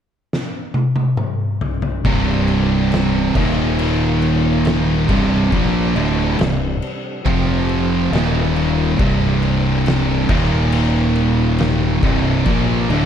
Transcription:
0.33 snare
0.74 high tom
0.96 high tom
1.17 mid tom
1.61 floor tom
1.82 floor tom
2.03 C1 C2 G2 C3 G3 D4, kick, crash
2.48 crash
2.92 snare, crash
3.33 D#1 D#2 A#2 D#3 A#3 F4, kick, crash
3.37 D#3
3.79 crash
4.22 crash
4.65 snare, crash
5.06 C1 C2 C3 G3 D4, kick, crash
5.10 G2 C3
5.52 A#1 A#2 F3 A#3, kick, crash
5.95 D1 D2 A2 D3, crash
6.39 C1 C2 G2, snare, crash
6.82 crash
7.23 F1 F2 C3 F3 C4 G4, kick, crash
7.27 F3
7.69 crash
8.11 D#1 D#2 A#2 D#3 A#3 F4, crash
8.16 snare
8.56 crash
8.95 C1 C2 G2 C3 G3 D4, kick, crash
9.42 crash
9.86 snare, crash
10.26 D#1 D#2 A#2 D#3 A#3 F4, kick, crash
10.72 crash
11.15 crash
11.58 snare, crash
12.01 C1 C2 G2 C3 G3 D4, kick, crash
12.44 A#1 A#2 F3 A#3, kick, crash
12.48 A#2 A#3
12.87 D1 D2 A2 D3, crash

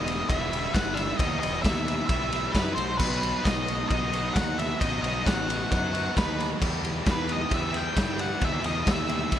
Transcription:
Already playing: E1 E2 B2 D#5
0.06 E3 G3 B3 E4, ride
0.29 E1 E5, kick, ride
0.51 E3 G3 B3 E4, ride
0.73 G1 E3 G3 B3 E4 F#5, kick, snare, ride
0.94 E5, ride
0.98 snare
1.18 D#2 E2 B2 E3 G3 B3 E4 D#5, kick, ride
1.40 E3 G3 B3 E4 D#5, ride
1.44 E1
1.62 D#2 E2 B2 E3 G3 B3 E4 E5, kick, snare, ride
1.86 E3 G3 B3 E4, ride
2.07 B1 E5, kick, ride
2.32 E3 G3 B3 E4, ride
2.52 F#2 E3 G3 B3 B4, kick, ride
2.56 E4, snare
2.75 B1 B2 F#3 B3 D#4 F#4 C5, ride
2.98 B2 F#3 B3 D#4 F#4 B4, kick, crash
3.21 B3 D#4 F#4, ride
3.44 B1 B2 F#3 B3 D#4 F#4 D#5, kick, snare, ride
3.66 B3 D#4 F#4, ride
3.89 B1 D#5, kick, ride
4.12 B3 D#4 F#4, ride
4.34 D#2 F#3 B3 D#4 F#4 F#5, kick, snare, ride
4.58 E5, snare, ride
4.79 A1 B2 F#3 B3 D#4 F#4 D#5, kick, ride
5.02 B1 B3 D#4 F#4 D#5, ride
5.25 A1 B2 F#3 B3 D#4 F#4 F#5, kick, snare, ride
5.48 B3 D#4 F#4, ride
5.71 F#2 F#5, kick, ride
5.93 B3 D#4 F#4, ride
6.15 D#2 F#3 B3 D#4 F#4 B4, kick, snare, ride
6.40 snare, ride
6.60 E2 B2 E3 G3 E4 G4, kick, crash
6.82 E3 G3 E4 G4, ride
7.04 E2 B2 E3 G3 E4 G4, kick, snare, ride
7.11 B4
7.27 E3 G3 E4 G4, ride
7.32 D#5
7.51 E2 E5, kick, ride
7.72 E3 G3 E4 G4, ride
7.77 G5
7.95 G2 E3 G3 E4 G4, kick, snare, ride
8.19 F#5, ride
8.40 D#2 E2 B2 E3 G3 E4 G4, kick, ride
8.44 E5
8.64 E2 E3 G3 E4 G4 D#5, ride
8.86 D#2 E2 B2 E3 G3 E4 G4, kick, snare, ride
8.91 E5
9.09 E3 G3 E4 G4, ride
9.32 B1, kick, ride

